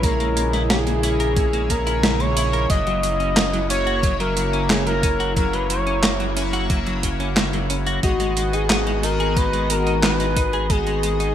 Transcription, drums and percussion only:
0.03 kick loud
0.03 closed hi-hat medium
0.20 closed hi-hat soft
0.37 closed hi-hat medium
0.53 snare soft
0.53 closed hi-hat soft
0.70 snare loud
0.70 closed hi-hat medium
0.87 closed hi-hat soft
1.03 closed hi-hat medium
1.20 closed hi-hat soft
1.37 kick loud
1.37 closed hi-hat medium
1.53 closed hi-hat soft
1.70 kick medium
1.70 closed hi-hat medium
1.87 closed hi-hat soft
2.03 snare loud
2.03 closed hi-hat medium
2.20 closed hi-hat soft
2.37 closed hi-hat medium
2.53 closed hi-hat soft
2.70 kick loud
2.70 closed hi-hat medium
2.87 closed hi-hat soft
3.03 closed hi-hat medium
3.20 closed hi-hat soft
3.37 snare loud
3.37 clap medium
3.37 closed hi-hat medium
3.54 closed hi-hat soft
3.70 closed hi-hat medium
3.87 closed hi-hat soft
4.03 kick loud
4.03 closed hi-hat medium
4.20 closed hi-hat soft
4.37 closed hi-hat medium
4.53 closed hi-hat soft
4.70 snare loud
4.70 clap medium
4.70 closed hi-hat medium
4.87 closed hi-hat soft
5.03 kick loud
5.03 closed hi-hat loud
5.20 closed hi-hat soft
5.37 kick loud
5.37 closed hi-hat medium
5.53 closed hi-hat soft
5.70 closed hi-hat medium
5.87 closed hi-hat soft
6.03 snare loud
6.03 clap medium
6.03 closed hi-hat medium
6.20 closed hi-hat soft
6.37 closed hi-hat medium
6.53 closed hi-hat soft
6.70 kick loud
6.70 closed hi-hat medium
6.87 closed hi-hat soft
7.03 kick medium
7.03 closed hi-hat medium
7.20 closed hi-hat soft
7.37 snare loud
7.37 clap medium
7.37 closed hi-hat medium
7.53 closed hi-hat soft
7.70 closed hi-hat medium
7.87 closed hi-hat soft
8.03 kick loud
8.03 closed hi-hat medium
8.20 closed hi-hat soft
8.37 closed hi-hat medium
8.53 closed hi-hat soft
8.70 snare loud
8.70 clap medium
8.70 closed hi-hat medium
8.87 closed hi-hat soft
9.03 closed hi-hat medium
9.20 closed hi-hat soft
9.37 kick loud
9.37 closed hi-hat medium
9.53 closed hi-hat soft
9.70 closed hi-hat medium
9.87 closed hi-hat soft
10.03 snare loud
10.03 clap medium
10.03 closed hi-hat medium
10.20 closed hi-hat soft
10.37 kick loud
10.37 closed hi-hat medium
10.53 closed hi-hat soft
10.70 kick loud
10.70 closed hi-hat medium
10.87 closed hi-hat soft
11.03 closed hi-hat medium
11.20 closed hi-hat soft

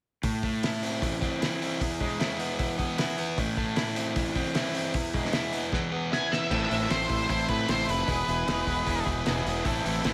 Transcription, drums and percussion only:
0.23 kick medium
0.23 open hi-hat medium
0.43 kick medium
0.43 open hi-hat soft
0.63 snare medium
0.63 open hi-hat medium
0.83 open hi-hat soft
1.02 kick medium
1.02 open hi-hat medium
1.22 kick medium
1.22 open hi-hat soft
1.42 snare loud
1.42 open hi-hat medium
1.62 open hi-hat soft
1.81 kick loud
1.81 open hi-hat medium
2.00 kick medium
2.00 open hi-hat soft
2.20 snare medium
2.20 open hi-hat medium
2.40 open hi-hat soft
2.59 kick medium
2.59 open hi-hat medium
2.79 kick medium
2.79 open hi-hat soft
2.98 snare medium
2.98 open hi-hat medium
3.18 open hi-hat soft
3.38 kick medium
3.38 open hi-hat medium
3.57 kick medium
3.57 open hi-hat soft
3.76 snare medium
3.76 open hi-hat medium
3.96 open hi-hat soft
4.16 kick loud
4.16 open hi-hat medium
4.36 kick medium
4.36 open hi-hat soft
4.55 snare loud
4.55 open hi-hat medium
4.75 open hi-hat soft
4.94 kick medium
4.94 open hi-hat medium
5.14 kick medium
5.14 open hi-hat soft
5.25 snare soft
5.33 snare medium
5.33 open hi-hat medium
5.53 open hi-hat soft
5.73 kick loud
5.73 snare soft
6.13 snare medium
6.33 snare medium
6.51 kick loud
6.51 crash medium
6.71 open hi-hat soft
6.90 snare medium
6.90 open hi-hat medium
7.09 kick medium
7.09 open hi-hat soft
7.29 kick medium
7.29 open hi-hat medium
7.48 kick medium
7.48 open hi-hat soft
7.68 snare medium
7.68 open hi-hat medium
7.89 open hi-hat soft
8.08 kick loud
8.08 open hi-hat medium
8.28 open hi-hat soft
8.48 snare medium
8.48 open hi-hat medium
8.67 kick medium
8.67 open hi-hat soft
8.87 kick medium
8.87 open hi-hat medium
9.06 kick medium
9.06 open hi-hat soft
9.26 snare loud
9.26 open hi-hat medium
9.38 snare soft
9.46 open hi-hat soft
9.65 kick loud
9.65 open hi-hat medium
9.86 open hi-hat soft
10.04 snare medium
10.04 open hi-hat medium

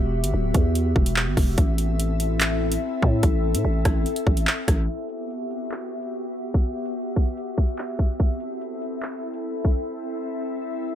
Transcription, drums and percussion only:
0.24 closed hi-hat loud
0.54 kick loud
0.54 closed hi-hat medium
0.75 closed hi-hat medium
0.96 kick loud
1.06 closed hi-hat medium
1.16 clap loud
1.37 kick medium
1.37 open hi-hat medium
1.58 kick loud
1.58 closed hi-hat medium
1.78 closed hi-hat medium
2.00 closed hi-hat medium
2.20 closed hi-hat medium
2.41 clap loud
2.41 closed hi-hat medium
2.72 closed hi-hat medium
3.02 kick loud
3.23 kick loud
3.23 closed hi-hat medium
3.55 closed hi-hat loud
3.85 kick loud
3.85 cross-stick loud
3.85 closed hi-hat medium
4.06 closed hi-hat soft
4.16 closed hi-hat medium
4.27 kick medium
4.37 closed hi-hat medium
4.47 clap loud
4.68 kick loud
4.68 cross-stick loud
4.68 closed hi-hat medium
4.89 closed hi-hat medium
5.09 closed hi-hat medium
5.31 closed hi-hat medium
5.51 closed hi-hat medium
5.72 clap loud
5.72 closed hi-hat medium
6.03 closed hi-hat medium
6.54 kick loud
6.54 closed hi-hat medium
6.86 closed hi-hat medium
7.16 kick loud
7.16 closed hi-hat medium
7.37 closed hi-hat medium
7.58 kick medium
7.68 closed hi-hat medium
7.78 clap loud
7.99 kick medium
7.99 closed hi-hat medium
8.20 kick loud
8.20 closed hi-hat medium
8.40 closed hi-hat medium
8.61 closed hi-hat medium
8.82 closed hi-hat medium
9.03 clap loud
9.03 closed hi-hat medium
9.34 closed hi-hat medium
9.65 kick loud

